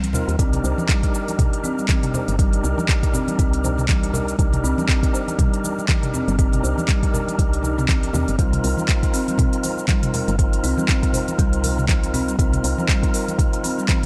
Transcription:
Already playing: C2
0.02 closed hi-hat, high conga, shaker
0.13 D#2 C4 D#4 F4 A#4, muted conga, low conga, shaker
0.28 D#2, closed hi-hat, shaker
0.39 C2 C4 D4 D#4 G4 A#4, kick, closed hi-hat, shaker
0.53 closed hi-hat, mid tom, muted conga, shaker
0.64 C2 C5, shaker
0.78 high conga, shaker
0.89 G3, kick, clap, closed hi-hat, shaker
1.03 kick, closed hi-hat, shaker
1.14 A#4, shaker
1.28 closed hi-hat, high conga, shaker
1.39 kick, closed hi-hat, mid tom, muted conga, low conga, shaker
1.53 closed hi-hat, shaker
1.64 C4, high conga, shaker
1.78 G3, muted conga, shaker
1.89 C4 D4 D#4 G4 A#4, kick, clap, closed hi-hat, high conga, shaker
2.03 closed hi-hat, mid tom, shaker
2.14 C5, muted conga, low conga, shaker
2.28 G1, closed hi-hat, shaker
2.39 G3 D4 D#4 G4 A#4, kick, closed hi-hat, shaker
2.53 closed hi-hat, muted conga, shaker
2.64 C2 A#4, shaker
2.78 high conga, shaker
2.89 kick, clap, closed hi-hat, shaker
3.03 kick, closed hi-hat, shaker
3.14 C4, low conga, shaker
3.28 G3, closed hi-hat, high conga, shaker
3.39 C2 C4, kick, closed hi-hat, muted conga, shaker
3.53 closed hi-hat, shaker
3.64 C5, high conga, low conga, shaker
3.77 mid tom, muted conga, shaker
3.89 G3 D4 D#4 G4 A#4, kick, clap, closed hi-hat, high conga, shaker
4.03 closed hi-hat, high conga, shaker
4.14 A#4, muted conga, low conga, shaker
4.28 closed hi-hat, shaker
4.39 C2 D4 D#4 G4 A#4, kick, closed hi-hat, shaker
4.53 closed hi-hat, mid tom, muted conga, shaker
4.64 C2 C4, shaker
4.78 G3, high conga, shaker
4.89 C4, kick, clap, closed hi-hat, shaker
5.03 kick, closed hi-hat, shaker
5.14 C5, shaker
5.28 closed hi-hat, high conga, shaker
5.39 G3, kick, closed hi-hat, mid tom, muted conga, low conga, shaker
5.53 closed hi-hat, shaker
5.64 A#4, high conga, shaker
5.79 muted conga, shaker
5.89 D4 D#4 G4 A#4, kick, clap, closed hi-hat, high conga, shaker
6.03 closed hi-hat, mid tom, shaker
6.14 C4, muted conga, low conga, shaker
6.28 G1 G3, closed hi-hat, shaker
6.38 C4 D4 D#4 G4 A#4, kick, closed hi-hat, shaker
6.52 closed hi-hat, mid tom, muted conga, shaker
6.63 C2 C5, shaker
6.78 high conga, shaker
6.89 G3, kick, clap, closed hi-hat, muted conga, shaker
7.03 kick, closed hi-hat, shaker
7.13 A#4, low conga, shaker
7.28 closed hi-hat, high conga, shaker
7.39 C2, kick, closed hi-hat, muted conga, shaker
7.53 closed hi-hat, shaker
7.63 D#4, high conga, low conga, shaker
7.78 C4, mid tom, muted conga, shaker
7.89 D4 D#4 G4 A#4, kick, clap, closed hi-hat, high conga, shaker
8.03 closed hi-hat, high conga, shaker
8.13 D#2 C4, muted conga, high conga, low conga, shaker
8.28 G1, closed hi-hat, shaker
8.38 C2 G3 C4 D#4 F4 A#4, kick, closed hi-hat, shaker
8.53 closed hi-hat, mid tom, muted conga, shaker
8.64 C2 A#4, open hi-hat, shaker
8.77 high conga, shaker
8.89 kick, clap, closed hi-hat, shaker
9.03 kick, closed hi-hat, shaker
9.14 C4, open hi-hat, shaker
9.28 G3, closed hi-hat, high conga, shaker
9.38 C4, kick, closed hi-hat, mid tom, muted conga, low conga, shaker
9.53 closed hi-hat, shaker
9.63 C5, open hi-hat, high conga, shaker
9.77 muted conga, shaker
9.88 G3 C4 D#4 F4 A#4, kick, clap, closed hi-hat, high conga, shaker
10.03 closed hi-hat, mid tom, shaker
10.14 A#4, open hi-hat, muted conga, low conga, shaker
10.28 G1, closed hi-hat, shaker
10.38 C4 D#4 F4 A#4, kick, closed hi-hat, shaker
10.53 closed hi-hat, muted conga, shaker
10.63 C2 C4, open hi-hat, shaker
10.78 G3, high conga, shaker
10.89 C4, kick, clap, closed hi-hat, muted conga, shaker
11.03 kick, closed hi-hat, shaker
11.13 C5, open hi-hat, low conga, shaker
11.28 closed hi-hat, high conga, shaker
11.38 C2 G3, kick, closed hi-hat, muted conga, shaker
11.53 closed hi-hat, shaker
11.63 A#4, open hi-hat, high conga, low conga, shaker
11.77 mid tom, muted conga, shaker
11.88 C4 D#4 F4 A#4, kick, clap, closed hi-hat, high conga, shaker
12.03 closed hi-hat, high conga, shaker
12.14 C4, open hi-hat, muted conga, low conga, shaker
12.28 G3, closed hi-hat, shaker
12.39 C2 C4 D#4 F4 A#4, kick, closed hi-hat, shaker
12.53 closed hi-hat, mid tom, muted conga, shaker
12.64 C2 C5, open hi-hat, shaker
12.78 high conga, shaker
12.89 G3, kick, clap, closed hi-hat, shaker
13.03 kick, closed hi-hat, shaker
13.14 A#4, open hi-hat, shaker
13.28 closed hi-hat, high conga, shaker
13.39 kick, closed hi-hat, mid tom, muted conga, low conga, shaker
13.53 closed hi-hat, shaker
13.64 C4, open hi-hat, high conga, shaker
13.78 G3, muted conga, shaker
13.89 C4 D#4 F4 A#4, kick, clap, closed hi-hat, high conga, shaker

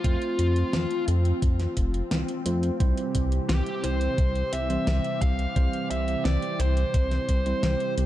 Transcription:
Already playing: F3 C4 F4
0.04 F2 A3 C4 F4 C5, kick, closed hi-hat
0.22 closed hi-hat
0.39 F2, closed hi-hat
0.56 closed hi-hat
0.73 F2, snare, closed hi-hat
0.91 closed hi-hat
1.08 F2, closed hi-hat
1.25 closed hi-hat
1.42 F2, kick, closed hi-hat
1.60 snare, closed hi-hat
1.77 F1, kick, closed hi-hat
1.94 closed hi-hat
2.11 C2, snare, closed hi-hat
2.28 closed hi-hat
2.46 F2 A3 C4 F4 C5, closed hi-hat
2.63 closed hi-hat
2.80 C2 C3 E3 G3 C4 E4 G4 C5, kick, closed hi-hat
2.97 closed hi-hat
3.15 C2, kick, closed hi-hat
3.32 closed hi-hat
3.49 C2 G4, snare, closed hi-hat
3.66 closed hi-hat
3.84 C2 C5, closed hi-hat
4.01 closed hi-hat
4.18 C2, kick, closed hi-hat
4.35 closed hi-hat
4.53 C2 E5, closed hi-hat
4.70 E3 G3 C4 C5, closed hi-hat
4.87 C2, snare, closed hi-hat
5.04 closed hi-hat
5.22 C2 F5, kick, closed hi-hat
5.39 closed hi-hat
5.56 C2 E3 G3 C4 C5, kick, closed hi-hat
5.73 closed hi-hat
5.91 C2 E5, closed hi-hat
6.08 closed hi-hat
6.25 C2 D5, snare, closed hi-hat
6.42 closed hi-hat
6.59 C2 C5, closed hi-hat
6.77 closed hi-hat
6.94 C2, kick, closed hi-hat
7.11 snare, closed hi-hat
7.29 C2, kick, closed hi-hat
7.46 G3 C4 E4 C5, closed hi-hat
7.63 C2, snare, closed hi-hat
7.80 closed hi-hat
7.98 C2, closed hi-hat

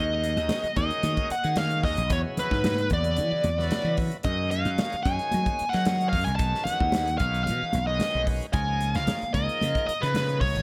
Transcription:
Already playing: D#2 D#3 G#3 C#4 F#4 A#4 D#5
0.24 closed hi-hat, muted conga
0.37 D#2, closed hi-hat
0.49 snare, closed hi-hat, high conga
0.64 muted slap bass stroke, closed hi-hat
0.76 D#2 D#3 G#3 C#4 F#4 A#4 D#5, kick, closed hi-hat
0.90 closed hi-hat
1.03 D#3, closed hi-hat, muted conga, high conga
1.17 kick, closed hi-hat
1.30 F#5, muted slap bass stroke, closed hi-hat
1.43 D#3 G#3 C#4 F#4 G#4, closed hi-hat
1.56 F5, snare, closed hi-hat, high conga
1.70 closed hi-hat
1.83 D#2 D#5, kick, snare, open hi-hat, muted conga
1.97 A#1, closed hi-hat
2.09 E2 C#3 F#3 B3 E4 G#4 C#5, kick, closed hi-hat, muted conga
2.37 B4, muted slap bass stroke, closed hi-hat, muted conga, low conga
2.51 G#2, kick, snare
2.64 snare, closed hi-hat, high conga
2.78 closed hi-hat
2.90 E2 C#3 F#3 B3 E4 G#4 D5, kick, closed hi-hat
3.04 closed hi-hat
3.16 E3, closed hi-hat, muted conga, low conga
3.32 muted slap bass stroke
3.44 E2, closed hi-hat, high conga
3.57 C#3 F#3 B3 E4 B4, snare
3.71 snare, closed hi-hat, high conga
3.85 E3
3.97 kick, open hi-hat, muted conga
4.11 closed hi-hat
4.23 F#2 D#3 G#3 C#4 F#4 A#4 D#5, kick, closed hi-hat, muted conga
4.51 F5, closed hi-hat, muted conga
4.65 F#2, closed hi-hat
4.78 snare, closed hi-hat, high conga
4.92 muted slap bass stroke, closed hi-hat
5.03 F#2 D#3 G#3 C#4 F#4 C#5 G#5, kick, closed hi-hat
5.19 closed hi-hat
5.31 F#3, closed hi-hat, muted conga, high conga
5.46 kick, closed hi-hat
5.59 muted slap bass stroke, closed hi-hat
5.69 D#3 G#3 C#4 F#4 A#4 F#5
5.73 F#3, snare, closed hi-hat
5.85 snare, closed hi-hat, high conga
6.01 closed hi-hat
6.09 F5, kick, open hi-hat, muted conga
6.13 F#2
6.24 C2 G#5, closed hi-hat
6.36 D#3 G#3 C#4 F#4 B4 A5, kick, closed hi-hat, muted conga
6.40 B1
6.55 snare
6.64 F#5, muted slap bass stroke, closed hi-hat, muted conga, low conga
6.80 D#2, kick
6.92 snare, closed hi-hat, high conga
7.07 closed hi-hat
7.18 B1 D#3 G#3 C#4 F#4 B4 F5, kick, closed hi-hat
7.34 closed hi-hat
7.44 B2 F5, closed hi-hat, muted conga, low conga
7.63 muted slap bass stroke
7.73 B1, closed hi-hat, high conga
7.87 D#3 G#3 C#4 F#4 B4 D#5
7.99 snare, closed hi-hat, high conga
8.15 B1
8.27 kick, open hi-hat, muted conga
8.41 closed hi-hat
8.52 C#2 F3 A#3 D#4 G#4 C#5 G#5, kick, closed hi-hat, muted conga
8.81 closed hi-hat, muted conga
8.95 C#2 F5, snare, closed hi-hat
9.07 snare, closed hi-hat, high conga
9.22 muted slap bass stroke, closed hi-hat
9.33 C#2 F3 A#3 D#4 G#4 A#4 D#5, kick, closed hi-hat
9.49 closed hi-hat
9.61 C#3, closed hi-hat, muted conga, high conga
9.75 kick, closed hi-hat
9.87 D#5, muted slap bass stroke, closed hi-hat
10.00 A#2 C#3 F3 D#4 G#4 B4 C#5, snare, closed hi-hat
10.14 snare, closed hi-hat, high conga
10.29 closed hi-hat
10.41 C#2 C#5, kick, open hi-hat, muted conga
10.55 G#1, closed hi-hat

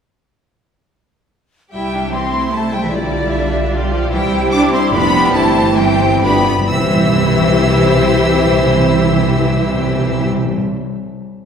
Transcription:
1.73 C2 G3 E4 G4 E5 G5
1.94 D4
2.13 E3 C4 E4 C5 C6
2.33 A3
2.53 A3 E4 C5 A5
2.73 G3 G5
2.83 E3 E5
2.92 B1 D3 G3 E4 F4 D5
3.32 D4 E5
3.72 G3 F4 G4 D5
3.93 F3
4.11 C2 E3 G3 E4 C5 G5
4.33 G3
4.52 D4 G4 D6
4.72 C4 C6
4.91 F1 F3 A3 B3 D4 D5 B5
5.14 D4
5.34 G1 E3 A3 C4 E4 C5 A5
5.57 C4
5.76 G3 C4 C5 G5
6.21 G1 G2 D3 B3 D4 F4 G4 B4 B5
6.32 G2
6.40 G2
6.50 G2
6.59 G2
6.69 C2 C3 E3 C4 E4 G4 C5 E5 E6
6.76 C3
6.83 C3
6.89 C3
6.96 C3
7.03 C3
7.09 C3
7.15 C3
7.22 C3
7.28 C3
7.35 C3
7.41 C3
7.48 C3
7.54 C3
7.61 C3
7.67 C3
7.74 C3
7.81 C3
7.87 C3
7.94 C3
8.01 C3
8.07 C3
8.14 C3
8.20 C3
8.26 C3
8.32 C3
8.39 C3
8.45 C3
8.52 C3
8.59 C3
8.65 C3
8.72 C3
8.78 C3
8.84 C3
8.90 C3
8.97 C3
9.04 C3
9.10 C3
9.16 C3
9.22 C3
9.29 C3
9.36 C3
9.42 C3
9.48 C3
9.54 C3
9.61 C3
9.67 C3
9.74 C3
9.81 C3
9.87 C3
9.93 C3
9.99 C3
10.06 C3
10.12 C3
10.19 C3
10.25 C3
10.32 C3
10.38 C3
10.45 C3
10.51 C3
10.57 C3

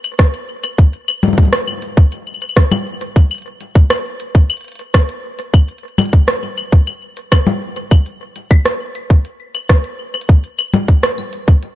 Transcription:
0.04 closed hi-hat, claves
0.19 kick, cross-stick
0.34 closed hi-hat
0.63 closed hi-hat, claves
0.78 kick
0.93 closed hi-hat
1.08 claves
1.23 closed hi-hat, low conga
1.28 low conga
1.33 low conga
1.38 kick, low conga
1.43 closed hi-hat, low conga
1.48 low conga
1.53 cross-stick
1.67 claves
1.82 closed hi-hat
1.97 kick
2.12 closed hi-hat
2.27 claves
2.34 claves
2.42 closed hi-hat, claves
2.49 claves
2.57 kick, cross-stick
2.72 closed hi-hat, low conga, claves
3.01 closed hi-hat
3.16 kick
3.31 closed hi-hat, claves
3.35 closed hi-hat
3.38 closed hi-hat
3.42 closed hi-hat
3.61 closed hi-hat
3.75 kick
3.90 cross-stick, claves
4.20 closed hi-hat
4.35 kick
4.50 closed hi-hat, claves
4.53 closed hi-hat
4.57 closed hi-hat
4.61 closed hi-hat
4.64 closed hi-hat
4.68 closed hi-hat
4.72 closed hi-hat
4.75 closed hi-hat
4.79 closed hi-hat
4.94 kick, cross-stick, claves
5.09 closed hi-hat
5.39 closed hi-hat
5.54 kick, claves
5.68 closed hi-hat
5.78 closed hi-hat
5.88 closed hi-hat
5.98 closed hi-hat, low conga, claves
6.02 closed hi-hat
6.06 closed hi-hat
6.09 kick, closed hi-hat
6.28 cross-stick, closed hi-hat
6.58 closed hi-hat, claves
6.72 kick
6.87 closed hi-hat, claves
7.17 closed hi-hat
7.32 kick, cross-stick, claves
7.47 closed hi-hat, low conga
7.76 closed hi-hat
7.91 kick, claves
8.06 closed hi-hat
8.36 closed hi-hat
8.51 kick, claves
8.65 cross-stick, closed hi-hat
8.95 closed hi-hat
9.10 kick
9.25 closed hi-hat
9.55 closed hi-hat, claves
9.69 kick, cross-stick
9.84 closed hi-hat
10.14 claves
10.21 closed hi-hat
10.29 kick
10.44 closed hi-hat
10.59 claves
10.74 closed hi-hat, low conga
10.88 kick
11.03 cross-stick, closed hi-hat
11.18 claves
11.33 closed hi-hat
11.48 kick
11.63 closed hi-hat

